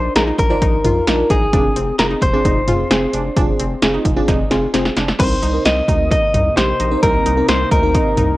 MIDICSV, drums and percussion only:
0, 0, Header, 1, 2, 480
1, 0, Start_track
1, 0, Key_signature, -3, "minor"
1, 0, Tempo, 458015
1, 1606, Time_signature, 4, 2, 24, 8
1, 8772, End_track
2, 0, Start_track
2, 0, Title_t, "Drums"
2, 164, Note_on_c, 9, 42, 74
2, 166, Note_on_c, 9, 38, 113
2, 269, Note_off_c, 9, 42, 0
2, 271, Note_off_c, 9, 38, 0
2, 404, Note_on_c, 9, 36, 88
2, 409, Note_on_c, 9, 42, 70
2, 509, Note_off_c, 9, 36, 0
2, 514, Note_off_c, 9, 42, 0
2, 647, Note_on_c, 9, 36, 90
2, 648, Note_on_c, 9, 42, 70
2, 752, Note_off_c, 9, 36, 0
2, 753, Note_off_c, 9, 42, 0
2, 885, Note_on_c, 9, 45, 86
2, 886, Note_on_c, 9, 42, 65
2, 990, Note_off_c, 9, 42, 0
2, 990, Note_off_c, 9, 45, 0
2, 1125, Note_on_c, 9, 38, 115
2, 1125, Note_on_c, 9, 42, 80
2, 1230, Note_off_c, 9, 38, 0
2, 1230, Note_off_c, 9, 42, 0
2, 1363, Note_on_c, 9, 42, 68
2, 1364, Note_on_c, 9, 36, 91
2, 1468, Note_off_c, 9, 42, 0
2, 1469, Note_off_c, 9, 36, 0
2, 1605, Note_on_c, 9, 42, 72
2, 1606, Note_on_c, 9, 36, 103
2, 1710, Note_off_c, 9, 42, 0
2, 1711, Note_off_c, 9, 36, 0
2, 1846, Note_on_c, 9, 42, 83
2, 1951, Note_off_c, 9, 42, 0
2, 2083, Note_on_c, 9, 42, 74
2, 2085, Note_on_c, 9, 38, 118
2, 2188, Note_off_c, 9, 42, 0
2, 2190, Note_off_c, 9, 38, 0
2, 2324, Note_on_c, 9, 36, 83
2, 2327, Note_on_c, 9, 42, 69
2, 2429, Note_off_c, 9, 36, 0
2, 2432, Note_off_c, 9, 42, 0
2, 2568, Note_on_c, 9, 36, 84
2, 2569, Note_on_c, 9, 42, 69
2, 2673, Note_off_c, 9, 36, 0
2, 2674, Note_off_c, 9, 42, 0
2, 2805, Note_on_c, 9, 42, 65
2, 2805, Note_on_c, 9, 45, 82
2, 2910, Note_off_c, 9, 42, 0
2, 2910, Note_off_c, 9, 45, 0
2, 3047, Note_on_c, 9, 38, 107
2, 3047, Note_on_c, 9, 42, 82
2, 3152, Note_off_c, 9, 38, 0
2, 3152, Note_off_c, 9, 42, 0
2, 3284, Note_on_c, 9, 42, 67
2, 3389, Note_off_c, 9, 42, 0
2, 3527, Note_on_c, 9, 36, 100
2, 3527, Note_on_c, 9, 42, 74
2, 3631, Note_off_c, 9, 36, 0
2, 3632, Note_off_c, 9, 42, 0
2, 3768, Note_on_c, 9, 42, 80
2, 3872, Note_off_c, 9, 42, 0
2, 4005, Note_on_c, 9, 42, 76
2, 4007, Note_on_c, 9, 38, 116
2, 4110, Note_off_c, 9, 42, 0
2, 4112, Note_off_c, 9, 38, 0
2, 4244, Note_on_c, 9, 36, 87
2, 4248, Note_on_c, 9, 42, 66
2, 4349, Note_off_c, 9, 36, 0
2, 4353, Note_off_c, 9, 42, 0
2, 4486, Note_on_c, 9, 38, 55
2, 4488, Note_on_c, 9, 36, 90
2, 4488, Note_on_c, 9, 42, 70
2, 4591, Note_off_c, 9, 38, 0
2, 4592, Note_off_c, 9, 36, 0
2, 4593, Note_off_c, 9, 42, 0
2, 4726, Note_on_c, 9, 42, 63
2, 4727, Note_on_c, 9, 38, 68
2, 4831, Note_off_c, 9, 38, 0
2, 4831, Note_off_c, 9, 42, 0
2, 4966, Note_on_c, 9, 38, 81
2, 4967, Note_on_c, 9, 42, 82
2, 5071, Note_off_c, 9, 38, 0
2, 5072, Note_off_c, 9, 42, 0
2, 5086, Note_on_c, 9, 38, 76
2, 5191, Note_off_c, 9, 38, 0
2, 5204, Note_on_c, 9, 42, 66
2, 5206, Note_on_c, 9, 38, 97
2, 5309, Note_off_c, 9, 42, 0
2, 5311, Note_off_c, 9, 38, 0
2, 5327, Note_on_c, 9, 38, 87
2, 5432, Note_off_c, 9, 38, 0
2, 5446, Note_on_c, 9, 36, 103
2, 5446, Note_on_c, 9, 49, 95
2, 5447, Note_on_c, 9, 42, 74
2, 5551, Note_off_c, 9, 36, 0
2, 5551, Note_off_c, 9, 49, 0
2, 5552, Note_off_c, 9, 42, 0
2, 5688, Note_on_c, 9, 42, 81
2, 5793, Note_off_c, 9, 42, 0
2, 5926, Note_on_c, 9, 42, 74
2, 5928, Note_on_c, 9, 38, 118
2, 6030, Note_off_c, 9, 42, 0
2, 6032, Note_off_c, 9, 38, 0
2, 6165, Note_on_c, 9, 36, 84
2, 6170, Note_on_c, 9, 42, 68
2, 6269, Note_off_c, 9, 36, 0
2, 6274, Note_off_c, 9, 42, 0
2, 6408, Note_on_c, 9, 36, 89
2, 6409, Note_on_c, 9, 42, 72
2, 6512, Note_off_c, 9, 36, 0
2, 6514, Note_off_c, 9, 42, 0
2, 6646, Note_on_c, 9, 45, 82
2, 6647, Note_on_c, 9, 42, 66
2, 6751, Note_off_c, 9, 42, 0
2, 6751, Note_off_c, 9, 45, 0
2, 6889, Note_on_c, 9, 38, 113
2, 6889, Note_on_c, 9, 42, 83
2, 6993, Note_off_c, 9, 38, 0
2, 6993, Note_off_c, 9, 42, 0
2, 7125, Note_on_c, 9, 42, 68
2, 7230, Note_off_c, 9, 42, 0
2, 7366, Note_on_c, 9, 36, 100
2, 7366, Note_on_c, 9, 42, 76
2, 7470, Note_off_c, 9, 36, 0
2, 7471, Note_off_c, 9, 42, 0
2, 7608, Note_on_c, 9, 42, 84
2, 7713, Note_off_c, 9, 42, 0
2, 7844, Note_on_c, 9, 42, 76
2, 7846, Note_on_c, 9, 38, 119
2, 7949, Note_off_c, 9, 42, 0
2, 7951, Note_off_c, 9, 38, 0
2, 8084, Note_on_c, 9, 36, 92
2, 8087, Note_on_c, 9, 42, 70
2, 8189, Note_off_c, 9, 36, 0
2, 8192, Note_off_c, 9, 42, 0
2, 8327, Note_on_c, 9, 36, 90
2, 8328, Note_on_c, 9, 42, 74
2, 8432, Note_off_c, 9, 36, 0
2, 8432, Note_off_c, 9, 42, 0
2, 8564, Note_on_c, 9, 45, 83
2, 8565, Note_on_c, 9, 42, 66
2, 8669, Note_off_c, 9, 45, 0
2, 8670, Note_off_c, 9, 42, 0
2, 8772, End_track
0, 0, End_of_file